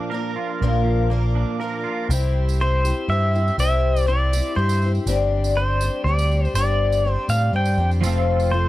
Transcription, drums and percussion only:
2.11 tambourine loud
2.49 tambourine medium
2.85 tambourine medium
3.35 tambourine soft
3.48 tambourine soft
3.59 tambourine medium
3.96 tambourine medium
4.33 tambourine loud
4.69 tambourine medium
4.82 tambourine soft
4.95 tambourine soft
5.07 tambourine loud
5.44 tambourine medium
5.81 tambourine loud
6.19 tambourine medium
6.31 tambourine soft
6.45 tambourine soft
6.55 tambourine loud
6.92 tambourine medium
7.29 tambourine medium
7.65 tambourine medium
7.91 tambourine soft
8.03 tambourine loud
8.40 tambourine medium

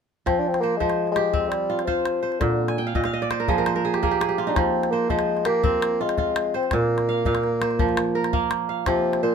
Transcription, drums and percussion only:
0.27 calabash thump soft
0.27 calabash click soft
0.54 calabash click soft
0.81 calabash thump medium
0.90 calabash click soft
1.07 calabash click soft
1.16 calabash click medium
1.34 calabash thump medium
1.52 calabash click medium
1.79 calabash click soft
1.88 calabash thump soft
1.88 calabash click soft
2.05 calabash click medium
2.23 calabash click soft
2.32 calabash click soft
2.41 calabash thump medium
2.41 calabash click medium
2.68 calabash click soft
2.95 calabash thump medium
3.04 calabash click soft
3.22 calabash click soft
3.31 calabash click medium
3.48 calabash thump medium
3.66 calabash click medium
3.94 calabash click soft
4.03 calabash thump medium
4.03 calabash click soft
4.21 calabash click medium
4.40 calabash click soft
4.49 calabash click soft
4.56 calabash thump medium
4.56 calabash click medium
4.83 calabash click soft
5.10 calabash thump medium
5.19 calabash click medium
5.37 calabash click soft
5.45 calabash click medium
5.64 calabash thump medium
5.82 calabash click medium
6.09 calabash click soft
6.18 calabash thump medium
6.18 calabash click soft
6.36 calabash click medium
6.54 calabash click soft
6.63 calabash click soft
6.71 calabash thump medium
6.71 calabash click medium
6.98 calabash click soft
7.25 calabash thump medium
7.35 calabash click medium
7.44 calabash click soft
7.62 calabash click medium
7.71 calabash click soft
7.79 calabash thump medium
7.79 calabash click soft
7.89 calabash click soft
7.97 calabash click medium
8.24 calabash click medium
8.33 calabash thump medium
8.51 calabash click medium
8.86 calabash thump medium
8.86 calabash click medium
9.13 calabash click soft

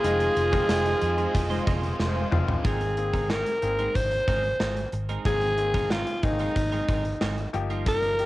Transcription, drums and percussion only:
0.04 closed hi-hat loud
0.20 closed hi-hat medium
0.36 closed hi-hat medium
0.53 kick medium
0.53 closed hi-hat medium
0.69 snare loud
0.69 tambourine medium
0.85 closed hi-hat medium
1.01 closed hi-hat medium
1.18 closed hi-hat medium
1.35 kick medium
1.35 closed hi-hat medium
1.51 closed hi-hat soft
1.67 kick loud
1.67 closed hi-hat medium
1.83 closed hi-hat soft
1.99 snare medium
2.32 mid tom loud
2.48 floor tom medium
2.65 kick loud
2.65 closed hi-hat medium
2.81 closed hi-hat soft
2.97 closed hi-hat medium
3.13 kick medium
3.13 closed hi-hat soft
3.30 snare loud
3.46 closed hi-hat medium
3.62 closed hi-hat medium
3.79 closed hi-hat soft
3.95 kick medium
3.95 closed hi-hat medium
4.11 closed hi-hat soft
4.28 kick medium
4.28 closed hi-hat medium
4.44 closed hi-hat soft
4.60 snare loud
4.77 closed hi-hat soft
4.92 closed hi-hat medium
5.09 closed hi-hat soft
5.25 kick loud
5.25 closed hi-hat medium
5.41 closed hi-hat soft
5.58 closed hi-hat medium
5.74 kick medium
5.74 closed hi-hat soft
5.91 snare loud
6.07 closed hi-hat medium
6.23 kick medium
6.23 closed hi-hat medium
6.39 closed hi-hat soft
6.56 kick medium
6.56 closed hi-hat medium
6.72 closed hi-hat soft
6.89 kick loud
6.89 closed hi-hat medium
7.05 closed hi-hat soft
7.21 snare loud
7.38 closed hi-hat soft
7.54 closed hi-hat medium
7.70 closed hi-hat soft
7.87 kick loud
7.87 closed hi-hat medium
8.03 closed hi-hat soft
8.19 closed hi-hat medium

